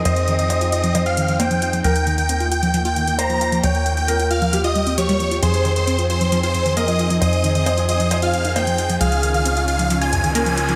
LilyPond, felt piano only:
\new Staff \with { instrumentName = "Felt piano" } { \time 4/4 \key f \minor \tempo 4 = 134 c''4 c''4 c''4 c''4 | bes'4. r4. c''4 | des''4 bes'4 g'4 g'4 | aes'4. r4. bes'4 |
c''4 c''4 c''4 c''4 | aes'4. r4. bes'4 | }